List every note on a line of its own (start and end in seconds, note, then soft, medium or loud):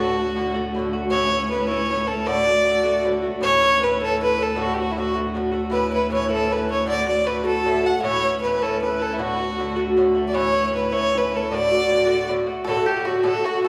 0.00 3.41 D2 medium
0.00 0.17 A2 medium
0.00 0.17 D3 medium
0.00 0.17 A3 medium
0.00 0.16 F#4 medium
0.00 0.53 F#4 medium
0.17 0.35 D3 soft
0.17 0.36 A3 soft
0.17 0.35 F#4 soft
0.36 0.54 A2 soft
0.36 0.54 D3 medium
0.36 0.54 A3 medium
0.36 0.53 F#4 medium
0.54 0.73 A2 medium
0.54 0.75 D3 medium
0.54 0.75 A3 medium
0.54 0.75 F#4 medium
0.74 0.93 A2 medium
0.74 0.94 D3 medium
0.74 0.93 A3 medium
0.79 0.92 F#4 medium
0.93 1.12 D3 soft
0.93 1.12 A3 soft
0.93 1.11 F#4 medium
1.11 1.32 A2 medium
1.11 1.32 E3 medium
1.11 1.31 C#4 medium
1.11 1.30 E4 medium
1.11 1.47 C#5 loud
1.31 1.51 E3 soft
1.31 1.51 C#4 soft
1.31 1.50 E4 soft
1.50 1.68 A2 soft
1.50 1.69 E3 medium
1.50 1.69 C#4 medium
1.50 1.67 E4 medium
1.50 1.69 B4 medium
1.67 1.90 E3 medium
1.67 1.90 C#4 medium
1.67 1.89 E4 medium
1.67 2.09 C#5 medium
1.71 1.88 A2 medium
1.90 2.08 A2 medium
1.90 2.09 E3 medium
1.90 2.07 C#4 medium
1.90 2.06 E4 medium
2.07 2.27 E3 soft
2.07 2.27 C#4 soft
2.07 2.26 E4 soft
2.07 2.28 A4 medium
2.26 2.47 A2 medium
2.26 2.47 D3 medium
2.26 2.47 A3 medium
2.26 2.44 F#4 medium
2.26 3.04 D5 loud
2.45 2.65 D3 soft
2.45 2.65 A3 soft
2.45 2.64 F#4 soft
2.65 2.83 A2 medium
2.65 2.84 D3 medium
2.65 2.83 A3 medium
2.65 2.82 F#4 medium
2.83 3.03 A2 medium
2.83 3.04 D3 medium
2.83 3.04 A3 medium
2.83 3.04 F#4 medium
3.04 3.23 A2 medium
3.04 3.23 D3 medium
3.04 3.22 A3 medium
3.04 3.21 F#4 medium
3.22 3.41 D3 soft
3.22 3.42 A3 medium
3.22 3.41 F#4 soft
3.36 3.43 D5 medium
3.41 8.02 D2 medium
3.41 3.62 A2 medium
3.41 3.62 E3 medium
3.41 3.62 C#4 medium
3.41 3.59 E4 medium
3.41 3.82 C#5 medium
3.41 3.85 C#5 loud
3.61 3.81 E3 soft
3.61 3.81 C#4 soft
3.61 3.80 E4 soft
3.80 3.99 A2 medium
3.80 4.00 E3 medium
3.80 3.99 C#4 medium
3.80 3.98 E4 medium
3.80 3.99 B4 medium
3.80 4.00 B4 medium
3.99 4.18 A2 soft
3.99 4.20 E3 soft
3.99 4.20 C#4 medium
3.99 4.20 E4 medium
3.99 4.19 A4 medium
4.03 4.20 A4 medium
4.19 4.38 A2 medium
4.19 4.39 E3 medium
4.19 4.37 C#4 medium
4.19 4.35 E4 medium
4.19 4.40 B4 medium
4.19 4.44 B4 loud
4.36 4.56 E3 soft
4.36 4.56 C#4 soft
4.36 4.56 E4 soft
4.36 4.58 A4 medium
4.42 4.63 A4 medium
4.55 4.76 A2 medium
4.55 4.77 D3 medium
4.55 4.77 A3 medium
4.55 4.77 F#4 medium
4.55 4.76 F#4 medium
4.61 4.75 F#4 medium
4.74 4.96 F#4 soft
4.74 4.81 G4 medium
4.78 4.96 D3 soft
4.78 4.96 A3 soft
4.78 4.95 F#4 medium
4.78 4.93 F#4 medium
4.92 5.00 E4 medium
4.96 5.14 A2 medium
4.96 5.14 D3 medium
4.96 5.14 A3 medium
4.96 5.13 F#4 medium
4.96 5.16 F#4 medium
4.96 5.13 F#4 medium
5.14 5.33 A2 soft
5.14 5.34 D3 medium
5.14 5.35 A3 medium
5.14 5.35 F#4 medium
5.34 5.53 A2 medium
5.34 5.53 D3 medium
5.34 5.52 A3 medium
5.34 5.50 F#4 medium
5.52 5.71 D3 soft
5.52 5.71 A3 medium
5.52 5.71 F#4 medium
5.70 5.91 A2 medium
5.70 5.92 E3 medium
5.70 5.92 C#4 medium
5.70 5.90 E4 medium
5.70 5.91 B4 medium
5.91 6.09 E3 soft
5.91 6.11 C#4 soft
5.91 6.10 E4 medium
5.91 6.10 B4 medium
6.09 6.29 A2 medium
6.09 6.29 E3 medium
6.09 6.28 C#4 medium
6.09 6.27 E4 medium
6.09 6.32 C#5 medium
6.14 6.29 C#5 medium
6.29 6.47 A2 medium
6.29 6.48 E3 medium
6.29 6.49 C#4 medium
6.29 6.50 E4 medium
6.29 6.48 A4 medium
6.29 6.54 A4 loud
6.47 6.67 A2 medium
6.47 6.68 E3 medium
6.47 6.67 C#4 medium
6.47 6.55 C#5 soft
6.51 6.64 E4 medium
6.51 6.70 B4 medium
6.51 6.73 B4 medium
6.65 6.85 E3 soft
6.65 6.86 C#4 soft
6.65 6.85 E4 soft
6.71 6.87 C#5 medium
6.71 6.92 C#5 medium
6.85 7.07 A2 medium
6.85 7.07 D3 medium
6.85 7.07 A3 medium
6.85 7.05 F#4 medium
6.85 7.07 D5 loud
6.91 7.09 D5 medium
7.06 7.24 D3 soft
7.06 7.25 A3 soft
7.06 7.26 F#4 soft
7.06 7.28 D5 medium
7.06 7.26 D5 medium
7.24 7.43 A2 soft
7.24 7.43 D3 medium
7.24 7.42 A3 medium
7.24 7.42 F#4 medium
7.24 7.45 B4 medium
7.24 7.29 C#5 medium
7.43 7.64 A2 medium
7.43 7.65 D3 soft
7.43 7.65 A3 medium
7.43 7.65 F#4 medium
7.43 7.65 A4 medium
7.43 7.88 A4 loud
7.65 7.84 A2 medium
7.65 7.84 D3 medium
7.65 7.83 A3 medium
7.65 7.82 F#4 medium
7.65 7.87 E5 medium
7.83 8.03 D3 soft
7.83 8.03 A3 soft
7.83 8.02 F#4 soft
7.83 8.06 F#5 medium
7.83 8.02 F#5 medium
8.02 12.70 D2 medium
8.02 8.23 A2 medium
8.02 8.24 E3 medium
8.02 8.24 C#4 medium
8.02 8.23 E4 medium
8.02 8.39 C#5 loud
8.02 8.43 C#5 medium
8.24 8.43 E3 soft
8.24 8.43 C#4 soft
8.24 8.42 E4 soft
8.42 8.61 A2 medium
8.42 8.62 E3 medium
8.42 8.62 C#4 medium
8.42 8.61 E4 medium
8.42 8.64 B4 medium
8.42 8.60 B4 medium
8.62 8.80 A2 medium
8.62 8.81 E3 medium
8.62 8.82 C#4 medium
8.62 8.82 E4 medium
8.62 8.81 A4 medium
8.62 8.84 A4 medium
8.81 9.00 A2 soft
8.81 9.00 E3 medium
8.81 9.01 C#4 soft
8.81 8.98 E4 medium
8.81 9.04 B4 medium
8.81 9.19 B4 medium
8.99 9.18 E3 soft
8.99 9.18 C#4 soft
8.99 9.18 E4 medium
8.99 9.15 A4 medium
9.14 9.23 E4 medium
9.18 9.39 A2 medium
9.18 9.39 D3 medium
9.18 9.39 A3 medium
9.18 9.38 F#4 medium
9.18 9.73 F#4 medium
9.18 9.78 F#4 medium
9.39 9.58 D3 soft
9.39 9.58 A3 soft
9.39 9.58 F#4 soft
9.58 9.76 A2 medium
9.58 9.76 D3 medium
9.58 9.75 A3 medium
9.58 9.75 F#4 medium
9.76 9.96 A2 medium
9.76 9.96 D3 medium
9.76 9.97 A3 medium
9.76 9.97 F#4 medium
9.97 10.15 A2 medium
9.97 10.16 D3 medium
9.97 10.15 A3 medium
9.97 10.13 F#4 medium
10.15 10.34 D3 soft
10.15 10.34 A3 medium
10.15 10.34 F#4 soft
10.28 10.36 D5 medium
10.33 10.54 A2 medium
10.33 10.55 E3 medium
10.33 10.55 C#4 medium
10.33 10.53 E4 medium
10.33 10.88 C#5 medium
10.33 10.74 C#5 loud
10.54 10.72 E3 soft
10.54 10.73 C#4 soft
10.54 10.73 E4 soft
10.72 10.91 A2 medium
10.72 10.92 E3 medium
10.72 10.92 C#4 medium
10.72 10.91 E4 medium
10.72 10.94 B4 medium
10.92 11.12 A2 medium
10.92 11.13 E3 medium
10.92 11.13 C#4 medium
10.92 11.13 E4 medium
10.92 11.52 C#5 medium
10.92 11.19 C#5 loud
11.13 11.31 A2 soft
11.13 11.32 E3 soft
11.13 11.32 C#4 medium
11.13 11.31 E4 medium
11.18 11.38 B4 medium
11.32 11.51 E3 soft
11.32 11.51 C#4 soft
11.32 11.50 E4 soft
11.36 11.56 A4 medium
11.50 11.71 A2 medium
11.50 11.72 D3 medium
11.50 11.72 A3 medium
11.50 11.70 F#4 medium
11.50 12.29 D5 medium
11.50 12.31 D5 loud
11.71 11.89 D3 soft
11.71 11.90 A3 soft
11.71 11.90 F#4 soft
11.90 12.07 A2 medium
11.90 12.07 D3 medium
11.90 12.06 A3 medium
11.90 12.05 F#4 medium
12.06 12.27 A2 medium
12.06 12.28 D3 medium
12.06 12.28 A3 medium
12.06 12.28 F#4 medium
12.28 12.47 A2 medium
12.28 12.48 D3 medium
12.28 12.48 A3 medium
12.28 12.46 F#4 medium
12.47 12.66 D3 soft
12.47 12.67 A3 soft
12.47 12.66 F#4 soft
12.65 12.77 A2 medium
12.65 12.77 D3 medium
12.65 12.85 A4 medium
12.65 12.89 A4 medium
12.69 12.77 A3 medium
12.69 12.75 F#4 medium
12.76 12.98 D3 soft
12.76 12.97 A3 medium
12.76 12.95 F#4 medium
12.86 13.04 G4 medium
12.86 13.06 G4 medium
12.86 13.07 G4 medium
12.97 13.07 D3 soft
12.97 13.07 A3 soft
12.97 13.06 F#4 medium
13.05 13.22 A2 medium
13.05 13.23 D3 medium
13.05 13.24 A3 medium
13.05 13.23 F#4 medium
13.05 13.24 F#4 medium
13.05 13.26 F#4 medium
13.05 13.25 F#4 medium
13.23 13.34 A2 medium
13.23 13.35 D3 medium
13.23 13.34 A3 medium
13.23 13.32 F#4 medium
13.23 13.43 A4 medium
13.23 13.45 A4 medium
13.23 13.46 A4 medium
13.33 13.55 D3 soft
13.33 13.55 A3 soft
13.33 13.54 F#4 medium
13.45 13.63 F#4 medium
13.45 13.64 F#4 medium
13.45 13.63 F#4 medium
13.56 13.65 D3 soft
13.56 13.65 A3 medium
13.56 13.64 F#4 medium
13.63 13.68 A2 medium
13.63 13.68 A4 medium